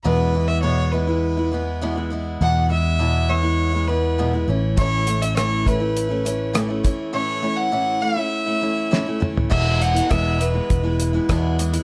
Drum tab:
CC |----------------|----------------|----------------|----------------|
HH |----------------|----------------|x-xxx-x-x-x-x-x-|----------------|
SD |----------------|----------------|----r-------r---|------------o---|
T2 |----------------|----------------|----------------|--------------o-|
FT |----------------|----------------|----------------|---------------o|
BD |----------------|----------------|o-----o-------o-|----------------|

CC |x---------------|
HH |--xxx-x-x-x-x-xx|
SD |----r-------r---|
T2 |----------------|
FT |----------------|
BD |o---o---o---o---|